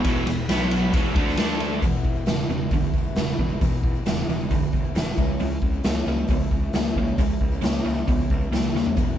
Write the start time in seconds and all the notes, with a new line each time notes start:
Already playing: G#3 B3 E4 B4
0.04 E1 E2 B2 E3, kick, ride
0.27 E1 E2 B2, ride
0.48 B1 B2 F#3 B3 F#4 B4, snare, ride
0.71 ride
0.93 E1 E2 B2 E3 G#3 B3 E4 B4, kick, ride
1.15 D2 D3 A3 D4, kick, ride
1.27 snare
1.37 D2 D3 A3 D4 A4, snare, ride
1.41 D4
1.60 ride
1.82 E1 E2 B2 E3 G#3 B3 E4, kick, open hi-hat
2.05 E1, kick
2.15 E3 G#3 B3 E4
2.26 E1 E2 B2 C#3 E3 G#3 B3 E4, snare, open hi-hat
2.49 E1 E2 C#3 E3 G#3 B3 E4
2.71 E1 E2 D3 E3 G#3 B3 E4, kick, open hi-hat
2.83 E3 G#3 B3 E4
2.94 E1 E3 G#3 B3, kick
2.98 E4
3.06 E3 G#3 B3 E4
3.16 E1 E2 B2 C#3 E3 G#3 B3 E4, snare, open hi-hat
3.39 E1 E2 C#3, kick
3.50 E3 G#3 B3 E4
3.61 E1 E2 B2 E3 G#3 B3 E4, kick, open hi-hat
3.84 E1, kick
3.95 E3 G#3 B3 E4
4.06 E1 E2 B2 C#3 E3 G#3 B3 E4, snare, open hi-hat
4.29 E1 E2 C#3 E3 G#3 B3 E4
4.50 E1 E2 D3 E3 G#3 B3, kick, open hi-hat
4.55 E4
4.62 E3 G#3 B3 E4
4.73 E1 E3 G#3 B3 E4, kick
4.84 E3 G#3 B3 E4
4.94 E1 E2 B2 C#3 E3 G#3 B3 E4, snare, open hi-hat
5.16 C#2 C#3 E3 G#3 C#4 E4, kick
5.39 C#2 C#3 G#3, open hi-hat
5.49 G#3 C#4 E4
5.62 C#2, kick
5.72 G#3 C#4 E4
5.84 C#2 C#3 E3 G#3 A#3 C#4 E4, snare, open hi-hat
6.06 C#2 C#3 E3 G#3 A#3 C#4 E4
6.28 C#2 C#3 E3 G#3 B3 C#4 E4, kick, open hi-hat
6.41 G#3 C#4 E4
6.51 C#2 E3 G#3 C#4 E4, kick
6.73 C#2 C#3 E3 G#3 A#3 C#4 E4, snare, open hi-hat
6.95 C#2 C#3 A#3, kick
7.08 G#3 C#4 E4
7.18 C#2 C#3 E3 G#3 C#4 E4, kick, open hi-hat
7.29 G#3 C#4 E4
7.41 C#2, kick
7.52 G#3 C#4 E4
7.62 C#2 C#3 E3 G#3 A#3 C#4 E4, snare, open hi-hat
7.85 C#2 C#3 E3 G#3 A#3 C#4 E4
8.08 C#2 C#3 E3 G#3 B3 C#4, kick, open hi-hat
8.12 E4
8.19 G#3 C#4 E4
8.30 C#2 E3 G#3 C#4 E4, kick
8.41 G#3 C#4 E4
8.51 C#2 C#3 E3 G#3 A#3 C#4, snare, open hi-hat
8.55 E4
8.73 D#2 C#3 A#3, snare
8.85 G#3 C#4 E4, floor tom
8.97 E1 E2 B2 E3 G#3 B3 E4, kick, open hi-hat
9.08 E3 G#3 B3 E4